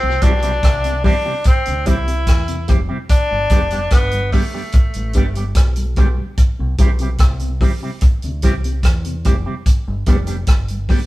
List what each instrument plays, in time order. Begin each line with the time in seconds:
Already playing: tenor saxophone C4
0.03 fingered electric bass C2, tonewheel organ C3
0.22 fingered electric bass B1, tonewheel organ E3 G3 C4, clean electric guitar G3 C4 E4 G4, tenor saxophone D4, kick, closed hi-hat
0.42 tonewheel organ C3, clean electric guitar G3 C4 E4 G4, closed hi-hat
0.63 fingered electric bass C2, kick, cross-stick, closed hi-hat
0.84 tonewheel organ C3, closed hi-hat
1.04 tonewheel organ E3 G3 C4, clean electric guitar G3 C4 E4 G4, tenor saxophone D4, kick, open hi-hat
1.25 tonewheel organ C3, clean electric guitar G3 C4 E4 G4
1.44 tenor saxophone C4, kick, closed hi-hat
1.66 fingered electric bass D2, tonewheel organ C3, closed hi-hat
1.86 fingered electric bass C2, tonewheel organ E3 G3 C4, clean electric guitar G3 C4 E4 G4, tenor saxophone E4, kick, closed hi-hat
2.07 tonewheel organ C3, closed hi-hat
2.27 fingered electric bass E2, kick, cross-stick, closed hi-hat
2.48 tonewheel organ C3, closed hi-hat
2.68 fingered electric bass F1, tonewheel organ E3 G3 C4, clean electric guitar G3 C4 E4 G4, kick, closed hi-hat
2.89 tonewheel organ C3, clean electric guitar G3 C4 E4 G4
3.09 tenor saxophone D4, kick, closed hi-hat
3.31 fingered electric bass G1, tonewheel organ G2
3.50 fingered electric bass F1, tonewheel organ D3 G3 B3, clean electric guitar G3 B3 D4 G4, kick, closed hi-hat
3.70 tonewheel organ G2, clean electric guitar G3 B3 D4 G4, closed hi-hat
3.90 fingered electric bass G1, tenor saxophone B3, kick, cross-stick, closed hi-hat
4.11 tonewheel organ G2, closed hi-hat
4.32 tonewheel organ D3 G3 B3, clean electric guitar G3 B3 D4 G4, tenor saxophone A3, kick, open hi-hat
4.54 tonewheel organ G2, clean electric guitar G3 B3 D4 G4
4.72 kick, closed hi-hat
4.94 fingered electric bass A1, tonewheel organ G2, closed hi-hat
5.13 fingered electric bass G1, tonewheel organ D3 G3 B3, clean electric guitar G3 B3 D4 G4, kick, closed hi-hat
5.35 tonewheel organ G2, clean electric guitar G3 B3 D4 G4, closed hi-hat
5.55 fingered electric bass B1, kick, cross-stick, closed hi-hat
5.76 tonewheel organ G2, closed hi-hat
5.96 fingered electric bass B1, tonewheel organ D3 G3 B3, clean electric guitar G3 B3 D4 G4, kick, closed hi-hat
6.18 tonewheel organ G2
6.38 kick, closed hi-hat
6.59 fingered electric bass C2, tonewheel organ C3
6.78 fingered electric bass B1, tonewheel organ E3 G3 C4, clean electric guitar G3 C4 E4 G4, kick, closed hi-hat
6.99 tonewheel organ C3, clean electric guitar E4 G4, closed hi-hat
7.03 clean electric guitar G3 C4
7.18 fingered electric bass C2, kick, cross-stick, closed hi-hat
7.40 tonewheel organ C3, closed hi-hat
7.61 tonewheel organ E3 G3 C4, clean electric guitar G3 C4 E4 G4, kick, open hi-hat
7.82 tonewheel organ C3, clean electric guitar G3 C4 E4 G4
8.01 kick, closed hi-hat
8.22 fingered electric bass D2, tonewheel organ C3, closed hi-hat
8.42 fingered electric bass C2, tonewheel organ E3 G3 C4, clean electric guitar G3 C4 E4 G4, kick, cross-stick, closed hi-hat
8.64 tonewheel organ C3, closed hi-hat
8.83 fingered electric bass E2, kick, cross-stick, closed hi-hat
9.05 tonewheel organ C3, closed hi-hat
9.25 fingered electric bass F1, tonewheel organ E3 G3 C4, clean electric guitar G3 C4 E4 G4, kick, closed hi-hat
9.46 tonewheel organ C3, clean electric guitar G3 C4 E4 G4
9.66 kick, closed hi-hat
9.88 fingered electric bass G1, tonewheel organ G2
10.06 fingered electric bass F1, tonewheel organ D3 G3 B3, clean electric guitar G3 B3 D4 G4, kick, closed hi-hat
10.27 tonewheel organ G2, clean electric guitar G3 B3 D4 G4, closed hi-hat
10.47 fingered electric bass G1, kick, cross-stick, closed hi-hat
10.68 tonewheel organ G2, closed hi-hat
10.89 tonewheel organ D3 G3 B3, clean electric guitar G3 B3 D4 G4, kick, open hi-hat